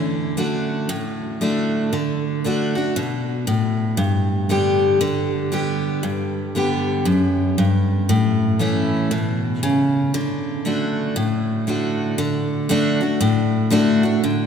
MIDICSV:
0, 0, Header, 1, 2, 480
1, 0, Start_track
1, 0, Key_signature, 2, "major"
1, 0, Tempo, 512821
1, 1797, Time_signature, 4, 2, 24, 8
1, 13538, End_track
2, 0, Start_track
2, 0, Title_t, "Steel-string acoustic guitar"
2, 0, Program_c, 0, 25
2, 0, Note_on_c, 0, 50, 78
2, 336, Note_off_c, 0, 50, 0
2, 347, Note_on_c, 0, 50, 51
2, 351, Note_on_c, 0, 57, 63
2, 356, Note_on_c, 0, 62, 61
2, 362, Note_on_c, 0, 66, 58
2, 813, Note_off_c, 0, 50, 0
2, 815, Note_off_c, 0, 57, 0
2, 818, Note_off_c, 0, 62, 0
2, 821, Note_off_c, 0, 66, 0
2, 833, Note_on_c, 0, 45, 82
2, 1319, Note_on_c, 0, 50, 56
2, 1324, Note_on_c, 0, 57, 56
2, 1329, Note_on_c, 0, 62, 59
2, 1338, Note_on_c, 0, 66, 59
2, 1761, Note_off_c, 0, 45, 0
2, 1781, Note_off_c, 0, 50, 0
2, 1783, Note_off_c, 0, 57, 0
2, 1786, Note_off_c, 0, 62, 0
2, 1791, Note_off_c, 0, 66, 0
2, 1803, Note_on_c, 0, 50, 75
2, 2276, Note_off_c, 0, 50, 0
2, 2288, Note_on_c, 0, 50, 50
2, 2294, Note_on_c, 0, 57, 53
2, 2301, Note_on_c, 0, 62, 61
2, 2309, Note_on_c, 0, 66, 59
2, 2565, Note_off_c, 0, 66, 0
2, 2573, Note_off_c, 0, 50, 0
2, 2576, Note_off_c, 0, 57, 0
2, 2576, Note_on_c, 0, 66, 48
2, 2580, Note_off_c, 0, 62, 0
2, 2599, Note_on_c, 0, 62, 45
2, 2751, Note_off_c, 0, 66, 0
2, 2762, Note_off_c, 0, 62, 0
2, 2772, Note_on_c, 0, 47, 80
2, 3229, Note_off_c, 0, 47, 0
2, 3249, Note_on_c, 0, 45, 76
2, 3709, Note_off_c, 0, 45, 0
2, 3718, Note_on_c, 0, 43, 80
2, 4205, Note_on_c, 0, 50, 53
2, 4212, Note_on_c, 0, 55, 57
2, 4216, Note_on_c, 0, 59, 63
2, 4223, Note_on_c, 0, 67, 63
2, 4647, Note_off_c, 0, 43, 0
2, 4667, Note_off_c, 0, 50, 0
2, 4671, Note_off_c, 0, 55, 0
2, 4673, Note_off_c, 0, 59, 0
2, 4677, Note_off_c, 0, 67, 0
2, 4687, Note_on_c, 0, 50, 81
2, 5153, Note_off_c, 0, 50, 0
2, 5164, Note_on_c, 0, 50, 58
2, 5169, Note_on_c, 0, 55, 60
2, 5176, Note_on_c, 0, 59, 61
2, 5182, Note_on_c, 0, 67, 60
2, 5628, Note_off_c, 0, 50, 0
2, 5630, Note_off_c, 0, 55, 0
2, 5634, Note_off_c, 0, 59, 0
2, 5637, Note_off_c, 0, 67, 0
2, 5645, Note_on_c, 0, 43, 75
2, 6131, Note_on_c, 0, 50, 53
2, 6138, Note_on_c, 0, 55, 56
2, 6144, Note_on_c, 0, 59, 56
2, 6152, Note_on_c, 0, 67, 59
2, 6571, Note_off_c, 0, 43, 0
2, 6591, Note_off_c, 0, 50, 0
2, 6595, Note_off_c, 0, 55, 0
2, 6598, Note_off_c, 0, 59, 0
2, 6602, Note_off_c, 0, 67, 0
2, 6602, Note_on_c, 0, 42, 75
2, 7067, Note_off_c, 0, 42, 0
2, 7095, Note_on_c, 0, 43, 80
2, 7553, Note_off_c, 0, 43, 0
2, 7573, Note_on_c, 0, 45, 82
2, 8043, Note_on_c, 0, 52, 55
2, 8051, Note_on_c, 0, 57, 57
2, 8057, Note_on_c, 0, 61, 60
2, 8063, Note_on_c, 0, 64, 61
2, 8494, Note_off_c, 0, 45, 0
2, 8507, Note_off_c, 0, 52, 0
2, 8511, Note_off_c, 0, 57, 0
2, 8514, Note_off_c, 0, 61, 0
2, 8517, Note_off_c, 0, 64, 0
2, 8527, Note_on_c, 0, 47, 80
2, 8989, Note_off_c, 0, 47, 0
2, 9012, Note_on_c, 0, 49, 80
2, 9471, Note_off_c, 0, 49, 0
2, 9491, Note_on_c, 0, 50, 75
2, 9957, Note_off_c, 0, 50, 0
2, 9968, Note_on_c, 0, 50, 56
2, 9975, Note_on_c, 0, 57, 59
2, 9981, Note_on_c, 0, 62, 56
2, 9986, Note_on_c, 0, 66, 59
2, 10428, Note_off_c, 0, 50, 0
2, 10431, Note_off_c, 0, 57, 0
2, 10434, Note_off_c, 0, 62, 0
2, 10437, Note_off_c, 0, 66, 0
2, 10445, Note_on_c, 0, 45, 78
2, 10923, Note_on_c, 0, 50, 49
2, 10930, Note_on_c, 0, 57, 60
2, 10936, Note_on_c, 0, 62, 58
2, 10944, Note_on_c, 0, 66, 60
2, 11366, Note_off_c, 0, 45, 0
2, 11384, Note_off_c, 0, 50, 0
2, 11387, Note_off_c, 0, 57, 0
2, 11390, Note_off_c, 0, 62, 0
2, 11394, Note_off_c, 0, 66, 0
2, 11401, Note_on_c, 0, 50, 74
2, 11868, Note_off_c, 0, 50, 0
2, 11879, Note_on_c, 0, 50, 74
2, 11884, Note_on_c, 0, 57, 74
2, 11895, Note_on_c, 0, 62, 88
2, 11896, Note_on_c, 0, 66, 91
2, 12163, Note_off_c, 0, 66, 0
2, 12168, Note_off_c, 0, 50, 0
2, 12170, Note_off_c, 0, 57, 0
2, 12175, Note_off_c, 0, 62, 0
2, 12175, Note_on_c, 0, 66, 52
2, 12195, Note_on_c, 0, 62, 43
2, 12349, Note_off_c, 0, 66, 0
2, 12359, Note_off_c, 0, 62, 0
2, 12360, Note_on_c, 0, 45, 84
2, 12828, Note_on_c, 0, 50, 78
2, 12835, Note_on_c, 0, 57, 84
2, 12843, Note_on_c, 0, 62, 80
2, 12846, Note_on_c, 0, 66, 96
2, 13120, Note_off_c, 0, 50, 0
2, 13124, Note_off_c, 0, 57, 0
2, 13124, Note_off_c, 0, 66, 0
2, 13128, Note_off_c, 0, 62, 0
2, 13135, Note_on_c, 0, 66, 61
2, 13153, Note_on_c, 0, 62, 46
2, 13280, Note_off_c, 0, 45, 0
2, 13307, Note_off_c, 0, 66, 0
2, 13316, Note_off_c, 0, 62, 0
2, 13325, Note_on_c, 0, 50, 78
2, 13538, Note_off_c, 0, 50, 0
2, 13538, End_track
0, 0, End_of_file